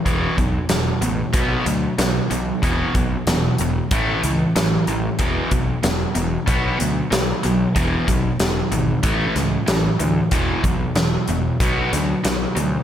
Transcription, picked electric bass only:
\new Staff \with { instrumentName = "Picked electric bass" } { \clef bass \time 4/4 \key b \phrygian \tempo 4 = 94 e,,8 b,,8 e,,8 a,,8 b,,8 d,8 b,,8 b,,8 | e,,8 b,,8 e,,8 e,,8 a,,8 cis,8 a,,8 a,,8 | e,,8 b,,8 e,,8 e,,8 b,,8 d,8 b,,8 b,,8 | e,,8 b,,8 e,,8 gis,,8 a,,8 cis,8 a,,8 d,8 |
e,,8 b,,8 e,,8 e,,8 b,,8 d,8 b,,8 d,8 | }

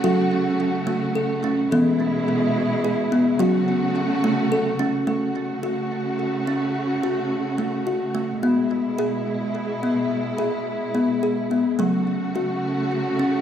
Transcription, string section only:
\new Staff \with { instrumentName = "String section" } { \time 6/8 \key fis \minor \tempo 4. = 71 <cis a fis'>2. | <b, gis e'>2. | <cis a fis'>2. | <cis a fis'>2.~ |
<cis a fis'>2. | <b, gis e'>2.~ | <b, gis e'>2. | <cis a fis'>2. | }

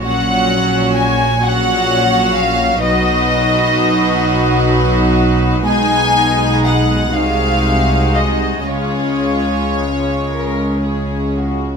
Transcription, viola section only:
\new Staff \with { instrumentName = "Viola section" } { \time 6/8 \key fis \major \tempo 4. = 41 <fis cis'>4. <fis cis'>4. | <fis dis'>2. | <gis dis'>4. <gis dis'>4. | <gis cis'>2. | }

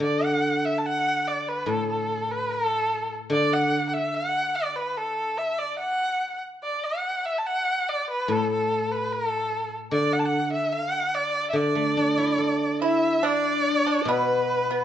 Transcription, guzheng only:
\new Staff \with { instrumentName = "Guzheng" } { \clef bass \time 2/4 \tempo 4 = 73 d2 | a,2 | d2~ | d4 r4 |
r2 | a,2 | d2 | d16 a16 d'16 e'16 a'4~ |
a'4 b,4 | }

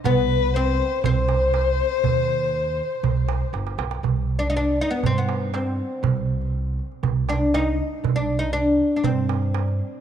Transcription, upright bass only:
\new Staff \with { instrumentName = "Upright bass" } { \clef bass \time 4/4 \tempo 4 = 120 c,2 c,2 | ees,2 c,4 g,,8 b,,8 | c,2 g,2 | c,2 c,2 |
c,2 g,2 | }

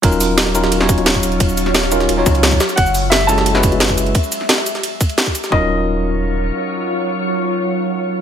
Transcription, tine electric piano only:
\new Staff \with { instrumentName = "Tine electric piano" } { \time 4/4 \key ees \minor \tempo 4 = 175 <ges des' ees' f' bes'>4. <ges des' ees' f' bes'>8. <ges des' ees' f' des''>4.~ <ges des' ees' f' des''>16~ | <ges des' ees' f' des''>4. <ges des' ees' f' bes'>8. <ges des' ees' f' des''>4~ <ges des' ees' f' des''>16 r8 | r4. <aes des' fes' ges' a'>8. <aes des' fes' ges' ces''>4.~ <aes des' fes' ges' ces''>16 | r1 |
<ges des' ees' f' bes'>1~ | <ges des' ees' f' bes'>1 | }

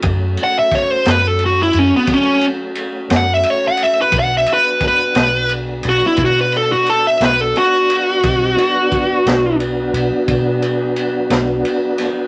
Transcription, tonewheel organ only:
\new Staff \with { instrumentName = "Tonewheel organ" } { \time 12/8 \key b \dorian \tempo 4. = 59 <fis a cis' fis'>1. | <fis b d' fis'>1. | <g bis dis' fis'>8 <fis b d' fis'>1~ <fis b d' fis'>4. | }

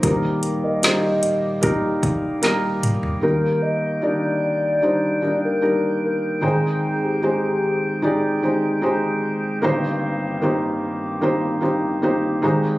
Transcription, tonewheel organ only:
<<
  \new Staff \with { instrumentName = "Tonewheel organ" } { \time 4/4 \key ees \major \tempo 4 = 75 << { g'1 | g''1~ | g''1 | g'1 | } \\ { bes1 | r1 | c'1 | c'1 | } >> }
  \new Staff \with { instrumentName = "Tonewheel organ" } { \clef bass \time 4/4 \key ees \major << { g1 | bes1 | aes1 | <g, bes>2.~ <g, bes>8 aes8 | } \\ { ees1 | ees1~ | ees1~ | ees1 | } >> }
>>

